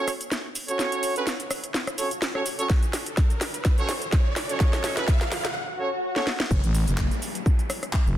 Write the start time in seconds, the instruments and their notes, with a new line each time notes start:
Already playing: horn section C#4 F#4 A4 C#5, riser
0.08 cross-stick, open hi-hat, shaker
0.21 closed hi-hat, shaker
0.32 snare, shaker
0.55 open hi-hat, shaker
0.68 horn section C#4 F#4 A4 C#5, closed hi-hat, shaker
0.79 snare, shaker
0.92 closed hi-hat, shaker
1.03 open hi-hat, shaker
1.16 horn section C#4 F#4 A4 B4, closed hi-hat, shaker
1.27 snare, shaker
1.40 closed hi-hat, shaker
1.51 cross-stick, open hi-hat, shaker
1.64 closed hi-hat, shaker
1.74 snare, shaker
1.87 cross-stick, closed hi-hat, shaker
1.98 horn section C#4 F#4 A4 C#5, open hi-hat, shaker
2.11 closed hi-hat, shaker
2.22 snare, shaker
2.35 horn section C#4 F#4 A4 C#5, cross-stick
2.46 open hi-hat, shaker
2.59 horn section C#4 F#4 A4 C#5, closed hi-hat, shaker
2.70 kick, snare, shaker
2.83 closed hi-hat, shaker
2.93 snare, open hi-hat, shaker
3.06 closed hi-hat, shaker
3.17 kick, snare, shaker
3.30 closed hi-hat, shaker
3.41 snare, open hi-hat, shaker
3.54 closed hi-hat, shaker
3.65 kick, snare, shaker
3.78 horn section C#4 F#4 A4 C#5, closed hi-hat, shaker
3.89 snare, open hi-hat, shaker
4.02 closed hi-hat, shaker
4.12 kick, snare, shaker
4.36 snare, open hi-hat, shaker
4.49 horn section C#4 F#4 A4 C#5, closed hi-hat, shaker
4.60 kick, snare, shaker
4.73 snare, closed hi-hat, shaker
4.84 snare, open hi-hat, shaker
4.97 horn section C#4 F#4 A4 B4, snare, closed hi-hat, shaker
5.08 kick, snare, shaker
5.21 snare, closed hi-hat, shaker
5.32 snare, open hi-hat, shaker
5.45 snare, closed hi-hat, shaker
5.55 swell
5.79 horn section C#4 F#4 A4 C#5
6.16 horn section C#4 F#4 A4 C#5, snare
6.27 snare
6.40 snare
6.51 fm bass F#1, kick, downlifter, shaker
6.64 fm bass A1, closed hi-hat, shaker
6.75 open hi-hat, shaker
6.88 fm bass F#1, closed hi-hat, shaker
6.98 kick, clap, shaker
7.11 closed hi-hat, shaker
7.22 open hi-hat, shaker
7.35 closed hi-hat, shaker
7.46 kick, shaker
7.59 closed hi-hat, shaker
7.70 cross-stick, open hi-hat, shaker
7.83 cross-stick, closed hi-hat, shaker
7.93 kick, clap, shaker
8.06 fm bass F#1, shaker